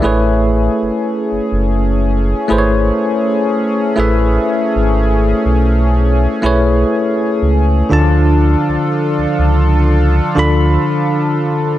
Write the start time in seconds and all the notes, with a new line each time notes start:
Already playing: E5
0.02 A1 A3 C#4 E4 G#4 B4 C#5
0.82 F#1
1.31 F#1
1.52 F#1
2.48 G#1 A3 E4 G#4 B4 C5
2.58 C#5
3.96 A1 A3 E4 G#4 B4 E5
4.75 G#1
5.45 B1
6.42 B1 A3 E4 G#4 B4 C#5
7.42 C#2
7.89 D2 D3 F3 D4 F4 A4 A5
8.68 C#2
9.18 C#2
9.38 C#2
10.35 D2 D3 D4 F4 A4
10.39 B5